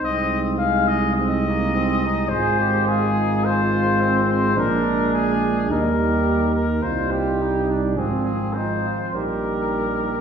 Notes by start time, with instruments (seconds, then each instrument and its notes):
Already playing: french horn D#4
0.02 tuba C2, trombone G#3, trumpet C4 D#5
0.58 trumpet G#3 F5
0.87 trumpet D#5
1.16 trumpet C4 D#5
1.48 trumpet A#3
1.75 trumpet C4
2.05 trumpet D#4
2.28 tuba G#1, french horn F4, trumpet G#4 C5
2.60 trumpet G4
2.86 trumpet F4 G#4
3.17 trumpet D#4
3.44 trumpet F4 C5
4.01 trumpet C4
4.29 trumpet C5
4.55 tuba A#1, trombone G#3, french horn D4, trumpet D4 A#4
5.14 trumpet G#4
5.69 tuba D#2, trombone G3, french horn D#4, trumpet D#4 A#4
5.99 trumpet G4
6.54 trumpet A#4
6.83 tuba C2, trombone G3, french horn D#4, trumpet F4 C5
7.11 trumpet G4
7.41 trumpet D#4
7.69 trumpet D4
7.96 tuba G#1, trombone F3, trumpet C4 G#4, french horn C4
8.25 trumpet G#4
8.54 trombone F3, french horn C4, trumpet D#4 C5
8.87 trumpet F4
9.14 tuba A#1, trombone G3, french horn D#4, trumpet G4 A#4